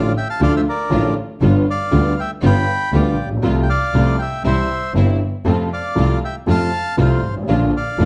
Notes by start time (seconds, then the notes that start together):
Already playing: A1 A2 D3 F3 A3 D4 F4 D5 F5
0.17 E5 G5
0.29 F5 A5
0.40 D2 D3 F3 A3 D4 F4 D5
0.44 F5
0.56 C5 E5
0.69 A#4 D5
0.90 A1 A2 D3 F3 A3 D4 F4
1.41 G1 G2 D3 G3 B3 F4
1.70 D5 F5
1.91 D2 D3 G3 B3 F4
2.20 E5 G5
2.42 G1 G2 D3 G3 B3 F4 B5
2.46 G5
2.92 D2 D3 G3 B3 F4 D5 G5
3.18 A#1
3.25 A1
3.30 A#1
3.37 B1
3.43 C2 C3 F3 A3 C4 F4
3.63 G5
3.69 D5 F5
3.93 C2 C3 F3 A3 C4 F4
4.19 E5 G5
4.43 C2 C3 E3 G3 C4 E4 C5 E5
4.94 G1 G2 C3 E3 G3 C4 E4
5.45 F2 C3 F3 A3 C4 F4
5.73 D5 F5
5.95 C2 C3 F3 A3 C4 F4
6.25 E5 G5
6.47 F2 C3 F3 A3 C4 F4 F5 A5
6.97 C2 C3 F3 A3 C4 F4 F5
7.01 C5
7.23 G#1
7.30 G1
7.36 G#1
7.43 A1
7.47 A#1 A#2 D3 F3 A#3 D4 F4
7.77 D5 F5
7.98 F1 F2 D3 F3 A#3 D4 F4